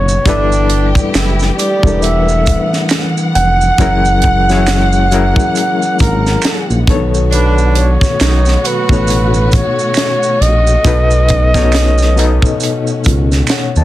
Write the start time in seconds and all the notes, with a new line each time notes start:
Already playing: F#1 B2 A3 B3 D#4 F#4 A4 B4 C#5
0.08 maracas
0.25 G1 D3 E3 G3 A3 B3 D4 E4 G4 A4 D5, kick, closed hi-hat, maracas
0.29 B4
0.52 maracas
0.70 closed hi-hat
0.95 kick, maracas
1.13 F#1 E3 E4, finger snap, snare, closed hi-hat, maracas
1.39 snare, maracas
1.57 G3 G4 D5, closed hi-hat, maracas
1.83 E1 G3 D4 E4 A4, kick, maracas
1.88 A#4
1.94 B4
2.02 E5 F#5, closed hi-hat, maracas
2.29 maracas
2.46 kick, closed hi-hat, maracas
2.73 snare, maracas
2.89 finger snap, snare, closed hi-hat, maracas
3.17 maracas
3.35 F1 F#5, closed hi-hat
3.61 maracas
3.78 F#1 F#3 G#3 A#3 C#4 E4 G#4 A#4, kick, closed hi-hat, maracas
4.05 maracas
4.22 kick, closed hi-hat
4.49 F#3 C#4 E4 G#4 C#5, snare, maracas
4.67 finger snap, snare, closed hi-hat, maracas
4.92 maracas
5.11 F#3 C#4 E4 G#4 A#4, closed hi-hat, maracas
5.36 kick, maracas
5.55 closed hi-hat, maracas
5.82 maracas
5.99 G#1 A#4, kick, closed hi-hat, maracas
6.26 snare, maracas
6.42 finger snap, snare, closed hi-hat, maracas
6.70 A#1, maracas
6.87 B1 B2 A3 B3 D4 F#4 A4 C#5, kick, closed hi-hat
6.95 D#3
7.14 maracas
7.31 D3 D4 B4, closed hi-hat, maracas
7.58 maracas
7.75 C#5, closed hi-hat
8.01 kick, snare, maracas
8.19 B1 D#3 D#4, finger snap, snare, closed hi-hat, maracas
8.46 snare, maracas
8.63 F#3 F#4 B4, closed hi-hat, maracas
8.89 A1 B2 B3 D#4 A4 C#5, kick, maracas
9.07 closed hi-hat, maracas
9.34 maracas
9.52 C#5, kick, closed hi-hat, maracas
9.79 maracas
9.94 finger snap, snare, closed hi-hat, maracas
10.23 maracas
10.40 A#1 C#4 D#5, closed hi-hat
10.67 maracas
10.84 B1 B2 B3 D#4 A4 B4, kick, closed hi-hat, maracas
11.11 maracas
11.28 kick, closed hi-hat
11.54 B2 B3 D#4 A4 C#5, kick, snare, maracas
11.72 finger snap, snare, closed hi-hat, maracas
11.98 snare, maracas
12.17 B2 B3 D#4 A4 D#5, closed hi-hat, maracas
12.42 kick, maracas
12.60 closed hi-hat, maracas
12.87 maracas
13.04 C#2, kick, closed hi-hat, maracas
13.32 snare, maracas
13.47 finger snap, snare, closed hi-hat, maracas
13.51 C#5 F#5
13.76 D#2 D#5 A5, maracas